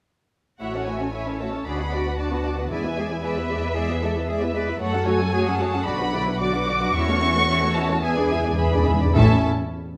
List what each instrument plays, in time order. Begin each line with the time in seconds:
0.60 double bass section A1, viola section A3 E4, cello section F#4, violin section C#5 E5 F#5
0.73 viola section C#4, violin section A4 C#5
0.86 viola section A3 E4, violin section C#5 E5 G#5
0.99 viola section C#4, violin section A4 C#5
1.12 viola section A3 E4, cello section E4, violin section C#5 E5
1.25 viola section C#4, violin section A4 C#5
1.39 viola section A3 E4, cello section F#4, violin section C#5 E5 A5
1.52 viola section C#4, violin section A4 C#5
1.65 double bass section D2, viola section D4 F#4, cello section G#4, violin section D5 B5
1.79 viola section B3 D4, violin section B4 F#5
1.92 viola section D4 F#4, cello section F#4, violin section D5
2.05 viola section B3 D4, violin section B4 F#5
2.18 viola section D4 F#4, violin section D5 A5
2.31 viola section B3 D4, violin section B4 F#5
2.44 viola section D4 F#4, violin section D5
2.57 viola section B3 D4, violin section B4 F#5
2.70 timpani E2, double bass section E2, viola section G#3 G#4, cello section E4, violin section D5 E5 G#5
2.84 viola section B3 E4, violin section B4 E5
2.97 viola section G#3 G#4, cello section G#4, violin section D5 E5
3.10 viola section B3 E4, violin section B4 E5
3.23 viola section G#3 G#4, cello section B4, violin section D5 E5
3.37 viola section B3 E4, violin section B4 E5
3.49 viola section G#3 G#4, violin section D5 E5
3.62 viola section B3 E4, violin section B4 E5
3.76 viola section G#3 G#4, cello section G#4, violin section D5 E5
3.88 viola section B3 E4, violin section B4 E5
4.02 viola section G#3 G#4, cello section A4, violin section D5 E5
4.15 viola section B3 E4, violin section B4 E5
4.28 viola section G#3 G#4, cello section G#4, violin section D5 E5
4.41 viola section B3 E4, violin section B4 E5
4.53 viola section G#3 G#4, cello section B4, violin section D5 E5
4.68 viola section B3 E4, violin section B4 E5
4.80 double bass section F#2, viola section A3 F#4, violin section F#4 C#5 F#5, cello section A4
4.93 viola section F#3 C#4, violin section A4 F#5
5.06 viola section A3 F#4, violin section F#4 C#5 G#5
5.20 viola section F#3 C#4, violin section A4 F#5
5.32 viola section A3 F#4, violin section F#4 C#5, cello section G#4
5.46 viola section F#3 C#4, violin section A4 F#5
5.59 viola section A3 F#4, violin section F#4 C#5 A5
5.73 viola section F#3 C#4, violin section A4 F#5
5.86 double bass section B1, viola section D3 F#4, cello section F#4, violin section D5 B5
6.00 viola section F#3 D4, violin section B4 F#5
6.13 viola section D3 F#4, cello section E4, violin section D5
6.26 viola section F#3 D4, violin section B4 F#5
6.40 viola section D3 F#4, cello section F#4, violin section D5 D6
6.53 viola section F#3 D4, violin section B4 F#5
6.67 viola section D3 F#4, violin section D5
6.80 viola section F#3 D4, violin section B4 F#5
6.94 timpani E2, double bass section E2, viola section C#4 E4, violin section C#5 E5 C#6
7.07 viola section A3 C#4, violin section A4 C#5
7.20 viola section C#4 E4, violin section C#5 E5
7.34 viola section A3 C#4, violin section A4 C#5
7.48 viola section C#4 E4, violin section C#5 E5
7.61 viola section A3 C#4, violin section A4 C#5
7.74 viola section C#4 E4, violin section C#5 E5 A5
7.89 viola section A3 C#4, violin section A4 C#5
8.01 timpani E2, viola section B3 E4, violin section G#4 E5 G#5, cello section G#4
8.12 timpani E2, violin section D5
8.16 timpani E2, viola section D4 G#4, violin section B4
8.27 timpani E2, violin section G#4 E5
8.32 timpani E2, viola section B3 E4
8.42 timpani E2, viola section D4 G#4, violin section B4 D5
8.50 timpani E2
8.58 timpani E2, viola section B3 E4, violin section G#4 E5 B5, cello section G#4
8.66 timpani E2
8.71 timpani E2, viola section D4 G#4, violin section B4 D5
8.83 timpani E2, violin section G#4 E5
8.87 timpani E2, viola section B3 E4
8.98 timpani E2, viola section D4, violin section B4 D5
9.03 timpani E2, viola section G#4
9.14 double bass section A1, timpani A2, cello section A2, viola section C#4 E4, violin section A4 E5 A5